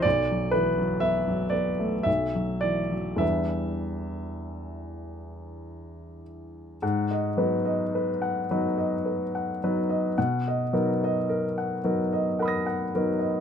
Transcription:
<<
  \new Staff \with { instrumentName = "Grand piano" } { \time 3/4 \key e \minor \tempo 4 = 54 << { d''8 b'8 e''8 d''8 e''8 d''8 | e''2~ e''8 r8 | \key gis \minor r2. | r2 <fis'' b'' dis''' ais'''>4 | } \\ { r2. | r2. | fis''16 dis''16 b'16 dis''16 b'16 fis''16 b'16 dis''16 b'16 fis''16 b'16 dis''16 | fis''16 dis''16 ais'16 dis''16 ais'16 fis''16 ais'16 dis''16 ais'16 fis''16 ais'16 dis''16 | } >> }
  \new Staff \with { instrumentName = "Grand piano" } { \clef bass \time 3/4 \key e \minor b,,16 fis16 e16 fis16 b16 fis16 b16 a16 b,,16 fis16 e16 fis16 | <e, e g d' b'>2. | \key gis \minor gis,8 <fis b dis'>4 <fis b dis'>4 <fis b dis'>8 | b,8 <fis b dis'>4 <fis b dis'>4 <fis b dis'>8 | }
>>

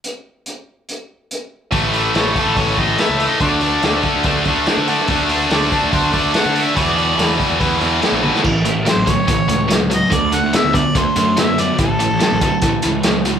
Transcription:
<<
  \new Staff \with { instrumentName = "Harmonica" } { \time 4/4 \key a \major \tempo 4 = 143 r1 | r4 cis''8 a'8 cis''8 dis''8 \tuplet 3/2 { e''4 dis''8 } | d''4. r2 r8 | r4 d''8 a'8 c''8 d''8 \tuplet 3/2 { fis''4 e''8 } |
d''4. r2 r8 | r4 c''8 cis''4. r8 dis''8 | d''8 fis''8 e''8 d''8 c''8 c''8 e''8 d''8 | a'2. r4 | }
  \new Staff \with { instrumentName = "Distorted electric guitar" } { \clef bass \time 4/4 \key a \major r1 | <a, e a>8 <a, e a>8 <a, e a>8 <a, e a>8 <a, e a>8 <a, e a>8 <a, e a>8 <a, e a>8 | <d a d'>8 <d a d'>8 <d a d'>8 <d a d'>8 <d a d'>8 <d a d'>8 <d a d'>8 <d a d'>8 | <d a d'>8 <d a d'>8 <d a d'>8 <d a d'>8 <d a d'>8 <d a d'>8 <d a d'>8 <d a d'>8 |
<e, b, e>8 <e, b, e>8 <e, b, e>8 <e, b, e>8 <e, b, e>8 <e, b, e>8 <e, b, e>8 <e, b, e>8 | <a, e>8 <a, e>8 <a, fis>8 <a, fis>8 <a, e>8 <a, e>8 <a, fis>8 <a, fis>8 | <d a>8 <d a>8 <d b>8 <d b>8 <d a>8 <d a>8 <d b>8 <d b>8 | <a, e>8 <a, e>8 <a, fis>8 <a, fis>8 <a, e>8 <a, e>8 <a, fis>8 <a, fis>8 | }
  \new Staff \with { instrumentName = "Picked electric bass" } { \clef bass \time 4/4 \key a \major r1 | a,,4 a,,8 r16 a,,8. a,,8 r16 cis,8 r16 | d,4 d,8 r16 d,8. d,8 r16 d8 r16 | d,4 d,8 r16 d,8. d,8 r16 d8 r16 |
e,4 e,8 r16 e,8. e,8 r16 bes,,8 r16 | a,,8. a,,16 r16 a,,8 r16 a,,16 r16 cis,4. | d,8. d,16 r16 d,8 r16 d,16 r16 fis,4. | a,,8. a,,16 r16 a,,8 r16 a,,16 r16 cis,4. | }
  \new DrumStaff \with { instrumentName = "Drums" } \drummode { \time 4/4 hh4 hh4 hh4 hh4 | <hho bd>8 hho8 <hho sn>8 <hho bd>8 <hho bd>8 <hho bd>8 <hho sn>8 hho8 | <hho bd>8 hho8 <hho sn>8 <hho bd>8 <hho bd>8 <hho bd>8 <hho sn>8 hho16 sn16 | <hho bd>8 hho8 <hho sn>8 <hho bd>8 <hho bd>8 <hho bd>8 <hho sn>8 hho8 |
<hho bd>8 hho8 <hho sn>8 <hho bd>8 <hho bd>8 hho8 <hho sn>8 tommh16 sn16 | <cymc bd>8 hh8 <hh sn>8 <hh bd>8 <hh bd>8 hh8 <hh sn>8 hh8 | <hh bd>8 hh8 <hh sn>16 sn16 <hh bd>8 <hh bd>8 hh8 <hh sn>8 hh8 | <hh bd>8 hh8 <hh sn>16 sn16 <hh bd>8 <hh bd>8 hh8 <hh sn>8 hh8 | }
>>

